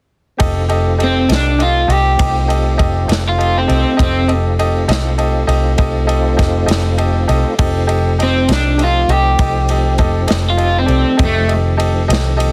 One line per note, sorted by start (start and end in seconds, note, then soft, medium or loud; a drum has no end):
0.37 1.26 F1 loud
0.37 3.95 A3 medium
0.37 3.94 C4 medium
0.37 3.95 D#4 medium
0.37 3.95 F4 medium
0.37 0.62 G4 medium
0.37 0.62 A4 medium
0.37 0.62 D#5 medium
0.37 kick medium
0.37 ride medium
0.69 0.92 G4 medium
0.69 0.92 A4 medium
0.69 0.92 D#5 medium
0.69 ride soft
0.98 1.22 G4 medium
0.98 1.22 A4 soft
0.98 1.22 D#5 medium
0.98 ride medium
1.04 1.31 C4 medium
1.28 1.85 C2 medium
1.28 1.52 G4 soft
1.28 1.52 A4 soft
1.28 1.52 D#5 soft
1.28 snare medium
1.28 ride medium
1.34 1.61 D4 medium
1.58 1.81 G4 soft
1.58 1.82 A4 soft
1.58 1.82 D#5 medium
1.58 ride medium
1.62 1.92 F4 medium
1.88 2.16 C2 medium
1.88 2.11 G4 medium
1.88 2.11 A4 soft
1.88 2.11 D#5 medium
1.88 ride medium
1.92 3.22 G4 medium
2.18 2.75 C2 medium
2.18 2.41 G4 soft
2.18 2.42 A4 soft
2.18 2.42 D#5 soft
2.18 kick medium
2.18 ride medium
2.48 2.71 G4 soft
2.48 2.72 A4 soft
2.48 2.72 D#5 soft
2.48 ride medium
2.77 3.07 F1 medium
2.77 3.01 G4 medium
2.77 3.01 A4 soft
2.77 3.01 D#5 medium
2.77 kick medium
2.77 ride medium
3.08 3.65 F1 medium
3.08 3.31 G4 soft
3.08 3.31 A4 soft
3.08 3.31 D#5 medium
3.08 ride medium
3.12 snare medium
3.29 3.56 F4 medium
3.38 3.61 G4 soft
3.38 3.61 A4 soft
3.38 3.61 D#5 medium
3.38 ride soft
3.58 4.00 C4 medium
3.67 3.83 C2 medium
3.67 3.91 G4 medium
3.67 3.91 A4 soft
3.67 3.91 D#5 medium
3.67 ride soft
3.97 4.85 F1 medium
3.97 4.21 G4 medium
3.97 4.21 A4 medium
3.97 4.21 D#5 medium
3.97 kick loud
3.97 ride medium
4.03 4.30 C4 medium
4.28 4.51 G4 medium
4.28 4.51 A4 soft
4.28 4.51 D#5 medium
4.28 ride soft
4.59 4.82 G4 medium
4.59 4.82 A4 medium
4.59 4.82 D#5 medium
4.59 ride medium
4.88 5.45 C2 medium
4.88 5.11 G4 medium
4.88 5.11 A4 medium
4.88 5.11 D#5 medium
4.88 snare medium
4.88 ride medium
5.18 5.41 G4 medium
5.18 5.41 A4 medium
5.18 5.41 D#5 medium
5.18 ride soft
5.47 5.76 C2 medium
5.47 5.71 G4 medium
5.47 5.71 A4 medium
5.47 5.71 D#5 medium
5.47 ride medium
5.78 6.35 C2 medium
5.78 6.01 G4 medium
5.78 6.01 A4 soft
5.78 6.01 D#5 medium
5.78 kick medium
5.78 ride medium
6.07 6.31 G4 medium
6.07 6.31 A4 medium
6.07 6.31 D#5 medium
6.07 ride medium
6.37 6.67 F1 medium
6.37 6.60 G4 medium
6.37 6.61 A4 soft
6.37 6.61 D#5 medium
6.37 kick medium
6.37 ride medium
6.42 snare soft
6.66 7.24 F1 medium
6.66 6.90 G4 medium
6.66 6.90 A4 medium
6.66 6.90 D#5 medium
6.66 ride medium
6.71 snare loud
6.98 7.21 G4 medium
6.98 7.21 A4 medium
6.98 7.21 D#5 medium
6.98 ride medium
7.27 7.43 C2 medium
7.27 7.51 G4 medium
7.27 7.51 A4 medium
7.27 7.51 D#5 medium
7.27 ride medium
7.58 8.45 F1 medium
7.58 11.16 F3 medium
7.58 11.16 A3 medium
7.58 11.16 C4 medium
7.58 11.16 D#4 medium
7.58 7.81 G4 medium
7.58 7.81 A4 medium
7.58 7.82 D#5 medium
7.58 kick loud
7.58 ride medium
7.87 8.11 G4 medium
7.87 8.11 A4 medium
7.87 8.11 D#5 medium
7.87 ride medium
8.19 8.41 G4 medium
8.19 8.42 A4 soft
8.19 8.42 D#5 medium
8.19 ride medium
8.23 8.50 C4 medium
8.48 9.05 C2 medium
8.48 8.71 G4 soft
8.48 8.71 A4 soft
8.48 8.71 D#5 medium
8.48 snare medium
8.48 ride medium
8.53 8.80 D4 medium
8.77 9.01 G4 soft
8.77 9.01 A4 soft
8.77 9.01 D#5 soft
8.77 ride medium
8.84 9.12 F4 medium
9.08 9.36 C2 medium
9.08 9.32 G4 medium
9.08 9.32 A4 medium
9.08 9.32 D#5 medium
9.08 ride medium
9.12 10.42 G4 medium
9.39 9.95 C2 medium
9.39 9.62 G4 soft
9.39 9.62 A4 soft
9.39 9.62 D#5 soft
9.39 kick medium
9.39 ride medium
9.69 9.92 G4 medium
9.69 9.92 A4 soft
9.69 9.92 D#5 medium
9.69 ride medium
9.98 10.26 F1 medium
9.98 10.21 G4 medium
9.98 10.21 A4 medium
9.98 10.22 D#5 medium
9.98 kick medium
9.98 ride soft
10.27 10.86 F1 medium
10.27 10.51 G4 soft
10.27 10.51 A4 soft
10.27 10.51 D#5 medium
10.27 snare loud
10.27 ride medium
10.50 10.76 F4 medium
10.57 10.81 G4 soft
10.57 10.81 A4 soft
10.57 10.81 D#5 soft
10.57 ride medium
10.79 11.20 C4 medium
10.86 11.03 C2 medium
10.86 11.10 G4 medium
10.86 11.10 A4 soft
10.86 11.10 D5 medium
10.86 ride soft
11.17 12.06 F1 loud
11.17 12.52 D#3 medium
11.17 12.52 F3 medium
11.17 12.52 A3 medium
11.17 12.52 C4 medium
11.17 11.41 G4 medium
11.17 11.41 A4 soft
11.17 11.41 D#5 medium
11.17 kick loud
11.17 ride medium
11.25 11.51 A3 medium
11.48 11.71 G4 soft
11.48 11.71 A4 soft
11.48 11.71 D#5 medium
11.48 ride soft
11.77 12.01 G4 medium
11.77 12.01 A4 medium
11.77 12.01 D#5 medium
11.77 ride medium
12.08 12.52 C2 medium
12.08 12.31 G4 medium
12.08 12.32 A4 medium
12.08 12.31 D#5 medium
12.08 ride medium
12.13 snare medium
12.37 12.52 G4 medium
12.37 12.52 A4 medium
12.37 12.52 D#5 medium
12.37 ride medium